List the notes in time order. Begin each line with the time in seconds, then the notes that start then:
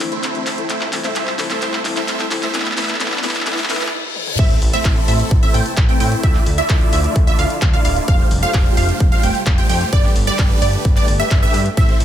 Already playing: D3 F3 A3 E4 A4, riser
0.00 E3 A3 C4 E4, clap, open hi-hat
0.12 A3 C4 E4 C5 E5, closed hi-hat
0.23 clap, closed hi-hat
0.34 E3 A3 C4 E4, closed hi-hat
0.46 A3 C4 E4 C5 E5, clap, open hi-hat
0.57 E3 A3 C4 E4, closed hi-hat
0.70 C3 G3 A3 C4 E4 F4 A4 C5 E5, clap, closed hi-hat
0.81 clap
0.92 E3 A3 C4 E4, clap, open hi-hat
1.04 A3 C4 E4 C5 E5, clap, closed hi-hat
1.16 A3 C4 E4 C5 E5, clap, closed hi-hat
1.27 clap
1.38 E3 A3 C4 E4, clap, open hi-hat
1.50 A3 C4 E4 C5 E5, clap, closed hi-hat
1.62 A3 C4 E4 C5 E5, clap, closed hi-hat
1.73 clap
1.84 E3 A3 C4 E4, clap, open hi-hat
1.96 A3 C4 E4 C5 E5, clap, closed hi-hat
2.08 A3 C4 E4 C5 E5, clap, closed hi-hat
2.20 clap, closed hi-hat
2.31 E3 A3 C4 E4, clap, open hi-hat
2.43 A3 C4 E4 C5 E5, clap, closed hi-hat
2.54 B2 E3 G3 A3 B3 D4 E4 B4 E5, clap, closed hi-hat
2.60 clap
2.66 clap, closed hi-hat
2.72 clap
2.77 E3 A3 B3 E4 B4 E5, clap, open hi-hat
2.83 clap
2.89 clap, closed hi-hat
2.95 clap
3.00 E3 A3 B3 E4 B4 E5, clap, closed hi-hat
3.06 clap
3.12 clap
3.18 clap
3.23 E3 A3 B3 E4 B4 E5, clap, open hi-hat
3.29 clap
3.35 clap, closed hi-hat
3.41 clap
3.46 E3 A3 B3 E4 B4 E5, clap, closed hi-hat, reverse cymbal
3.52 clap
3.58 clap, open hi-hat
3.64 clap
3.69 E3 A3 B3 E4 B4 E5, clap, open hi-hat
3.75 clap
3.81 clap, closed hi-hat
3.87 clap
4.16 high tom
4.27 mid tom
4.39 A1 C3 E3 A3 C4 E4 A4 C5 E5, kick, closed hi-hat, crash, impact
4.50 closed hi-hat
4.62 A1, open hi-hat
4.73 A3 C4 E4 C5 E5, closed hi-hat
4.85 A1, kick, clap, closed hi-hat
4.96 closed hi-hat
5.08 A1 A3 C4 E4 C5 E5, open hi-hat
5.20 closed hi-hat
5.31 A1, kick, closed hi-hat
5.43 A3 C4 E4 C5 E5, closed hi-hat
5.54 A1 A3 C4 E4 C5 G5, open hi-hat
5.66 closed hi-hat
5.77 A1, kick, clap, closed hi-hat
5.89 A3 C4 E4 C5 G5, closed hi-hat
6.00 A2 A3 C4 E4 C5 G5, open hi-hat
6.12 closed hi-hat
6.23 D2 D3 F3 A3 D4 E4 F4 D5 E5, kick, closed hi-hat
6.35 clap, closed hi-hat
6.46 D2, open hi-hat
6.58 A3 E4 F4 D5 E5, closed hi-hat
6.69 D2, kick, clap, closed hi-hat
6.81 closed hi-hat
6.93 D2 A3 E4 F4 D5 E5, open hi-hat
7.04 closed hi-hat
7.16 D2, kick, closed hi-hat
7.27 A3 E4 F4 D5 E5, closed hi-hat
7.39 D2 A3 E4 F4 D5 F5, open hi-hat
7.50 closed hi-hat
7.62 D2, kick, clap, closed hi-hat
7.73 A3 E4 F4 D5 F5, closed hi-hat
7.85 D1 A3 E4 F4 D5 F5, open hi-hat
7.96 closed hi-hat
8.08 F1 C3 G3 A3 F4 G4 C5 F5, kick, closed hi-hat
8.20 closed hi-hat
8.31 F1, open hi-hat
8.43 A3 F4 G4 C5 F5, closed hi-hat
8.54 F1, kick, clap, closed hi-hat
8.66 closed hi-hat
8.77 F1 A3 F4 G4 C5 F5, open hi-hat
8.89 closed hi-hat
9.00 F1, kick, closed hi-hat
9.12 A3 F4 G4 C5 F5, closed hi-hat
9.23 F1 A3 F4 G4 C5 G5, open hi-hat
9.35 closed hi-hat
9.46 F1, kick, clap, closed hi-hat
9.58 A3 F4 G4 C5 G5, closed hi-hat
9.69 F2 A3 F4 G4 C5 G5, open hi-hat
9.81 closed hi-hat
9.93 G1 D3 A3 B3 D4 G4 B4 D5, kick, closed hi-hat
10.04 clap, closed hi-hat
10.16 G1, open hi-hat
10.27 A3 D4 G4 B4 D5, closed hi-hat
10.39 G1, kick, clap, closed hi-hat
10.50 closed hi-hat
10.62 G1 A3 D4 G4 B4 D5, open hi-hat
10.73 closed hi-hat
10.85 G1, kick, closed hi-hat
10.96 A3 D4 G4 B4 D5, clap, closed hi-hat
11.08 G1, open hi-hat
11.20 A3 D4 G4 B4 E5, closed hi-hat
11.31 G1, kick, clap, closed hi-hat
11.43 A3 D4 G4 B4 E5, closed hi-hat
11.54 G2, open hi-hat
11.66 closed hi-hat
11.77 A1 C3 E3 A3 C4 E4 A4 C5 E5, kick, closed hi-hat
11.89 closed hi-hat
12.00 A1, open hi-hat